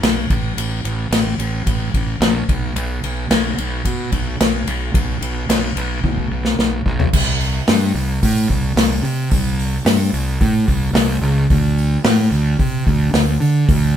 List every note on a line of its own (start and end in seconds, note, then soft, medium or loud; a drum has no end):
0.03 0.25 B1 medium
0.03 snare loud
0.03 ride medium
0.30 0.52 A1 medium
0.30 kick loud
0.30 ride medium
0.57 0.79 A1 medium
0.57 ride loud
0.84 1.07 A1 medium
0.84 ride medium
1.11 1.34 A1 medium
1.11 snare medium
1.11 ride medium
1.38 1.61 A1 medium
1.38 ride medium
1.66 1.89 A1 medium
1.66 kick medium
1.66 ride medium
1.94 2.16 A1 medium
1.94 kick medium
1.94 ride medium
2.20 2.43 A#1 loud
2.20 snare loud
2.20 ride medium
2.48 2.71 B1 medium
2.48 kick loud
2.48 ride medium
2.76 2.98 B1 medium
2.76 ride medium
3.03 3.26 B1 medium
3.03 ride medium
3.30 3.53 B1 medium
3.30 snare loud
3.30 ride medium
3.58 3.81 B1 loud
3.58 ride medium
3.85 4.08 B2 medium
3.85 kick medium
3.85 ride medium
4.12 4.35 B1 medium
4.12 kick medium
4.12 ride medium
4.40 4.63 B1 medium
4.40 snare loud
4.40 ride medium
4.67 4.90 B1 medium
4.67 ride medium
4.94 5.17 B1 medium
4.94 kick loud
4.94 ride medium
5.21 5.44 B1 medium
5.21 ride medium
5.49 5.71 B1 loud
5.49 snare medium
5.49 ride loud
5.76 5.98 B1 loud
5.76 ride medium
6.03 6.26 B1 medium
6.03 kick medium
6.03 high tom medium
6.18 kick medium
6.31 6.54 B1 medium
6.45 snare medium
6.59 6.81 B1 loud
6.59 snare medium
6.85 7.08 B1 loud
6.85 kick medium
7.00 floor tom loud
7.13 7.59 C2 medium
7.13 kick loud
7.13 crash loud
7.40 open hi-hat medium
7.68 7.91 G2 medium
7.68 snare loud
7.68 open hi-hat medium
7.94 8.18 C2 medium
7.94 open hi-hat medium
8.23 8.46 A2 medium
8.23 kick loud
8.23 open hi-hat medium
8.49 8.73 C2 medium
8.49 kick medium
8.49 open hi-hat medium
8.76 8.99 C2 loud
8.76 snare loud
8.76 open hi-hat loud
9.03 9.27 C3 medium
9.03 open hi-hat medium
9.31 9.78 C2 loud
9.31 kick loud
9.31 open hi-hat medium
9.59 open hi-hat medium
9.85 10.09 G2 medium
9.85 snare loud
9.85 open hi-hat medium
10.13 10.36 C2 medium
10.13 open hi-hat medium
10.41 10.64 A2 loud
10.41 kick loud
10.41 open hi-hat medium
10.68 10.91 C2 medium
10.68 kick medium
10.68 open hi-hat medium
10.93 11.17 C2 loud
10.93 snare loud
10.93 open hi-hat medium
11.21 11.45 C#2 loud
11.21 open hi-hat medium
11.50 11.96 D2 loud
11.50 kick loud
11.50 open hi-hat medium
11.78 open hi-hat medium
12.04 12.27 A2 medium
12.04 snare loud
12.04 open hi-hat medium
12.31 12.54 D2 loud
12.31 open hi-hat medium
12.59 12.82 C3 medium
12.59 kick loud
12.59 open hi-hat medium
12.87 13.09 D2 medium
12.87 kick medium
12.87 open hi-hat medium
13.13 13.36 D2 loud
13.13 snare loud
13.13 open hi-hat medium
13.40 13.64 D3 medium
13.40 open hi-hat medium
13.69 13.97 D2 loud
13.69 kick loud
13.69 open hi-hat medium